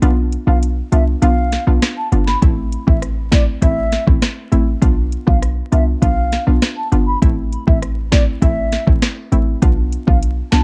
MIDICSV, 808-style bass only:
0, 0, Header, 1, 2, 480
1, 0, Start_track
1, 0, Tempo, 600000
1, 18, Time_signature, 4, 2, 24, 8
1, 8510, End_track
2, 0, Start_track
2, 0, Title_t, "808-style bass"
2, 0, Program_c, 0, 38
2, 18, Note_on_c, 0, 35, 107
2, 295, Note_off_c, 0, 35, 0
2, 377, Note_on_c, 0, 35, 94
2, 654, Note_off_c, 0, 35, 0
2, 738, Note_on_c, 0, 36, 91
2, 923, Note_off_c, 0, 36, 0
2, 978, Note_on_c, 0, 35, 94
2, 1255, Note_off_c, 0, 35, 0
2, 1338, Note_on_c, 0, 35, 88
2, 1431, Note_off_c, 0, 35, 0
2, 1698, Note_on_c, 0, 31, 91
2, 1883, Note_off_c, 0, 31, 0
2, 1939, Note_on_c, 0, 33, 102
2, 2215, Note_off_c, 0, 33, 0
2, 2300, Note_on_c, 0, 33, 99
2, 2660, Note_on_c, 0, 35, 92
2, 2672, Note_off_c, 0, 33, 0
2, 2844, Note_off_c, 0, 35, 0
2, 2898, Note_on_c, 0, 33, 102
2, 3175, Note_off_c, 0, 33, 0
2, 3258, Note_on_c, 0, 33, 81
2, 3351, Note_off_c, 0, 33, 0
2, 3619, Note_on_c, 0, 33, 95
2, 3804, Note_off_c, 0, 33, 0
2, 3858, Note_on_c, 0, 35, 108
2, 4135, Note_off_c, 0, 35, 0
2, 4221, Note_on_c, 0, 35, 98
2, 4497, Note_off_c, 0, 35, 0
2, 4579, Note_on_c, 0, 36, 86
2, 4764, Note_off_c, 0, 36, 0
2, 4817, Note_on_c, 0, 35, 97
2, 5095, Note_off_c, 0, 35, 0
2, 5179, Note_on_c, 0, 35, 88
2, 5271, Note_off_c, 0, 35, 0
2, 5540, Note_on_c, 0, 31, 93
2, 5724, Note_off_c, 0, 31, 0
2, 5778, Note_on_c, 0, 33, 106
2, 6055, Note_off_c, 0, 33, 0
2, 6141, Note_on_c, 0, 33, 100
2, 6501, Note_on_c, 0, 35, 94
2, 6513, Note_off_c, 0, 33, 0
2, 6684, Note_off_c, 0, 35, 0
2, 6738, Note_on_c, 0, 33, 100
2, 7015, Note_off_c, 0, 33, 0
2, 7099, Note_on_c, 0, 33, 81
2, 7191, Note_off_c, 0, 33, 0
2, 7458, Note_on_c, 0, 33, 91
2, 7643, Note_off_c, 0, 33, 0
2, 7699, Note_on_c, 0, 35, 114
2, 7976, Note_off_c, 0, 35, 0
2, 8062, Note_on_c, 0, 35, 91
2, 8337, Note_off_c, 0, 35, 0
2, 8418, Note_on_c, 0, 36, 90
2, 8510, Note_off_c, 0, 36, 0
2, 8510, End_track
0, 0, End_of_file